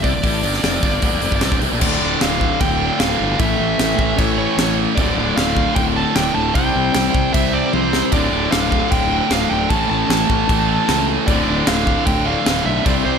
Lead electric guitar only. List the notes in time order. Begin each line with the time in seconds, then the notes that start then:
0.03 D5
1.82 D5
2.22 F5
2.61 G5
3.00 F5
3.40 E5
3.98 E5
4.19 C#5
4.38 C#5
4.96 D5
5.36 F5
5.75 G5
5.96 A5
6.16 G5
6.35 A5
6.55 G5
7.34 E5
7.53 D5
7.73 C5
8.13 D5
8.52 F5
8.91 G5
9.32 F5
9.49 G5
9.70 A5
9.90 A5
11.27 D5
11.67 F5
12.06 G5
12.27 F5
12.66 E5
12.86 D5
13.05 C5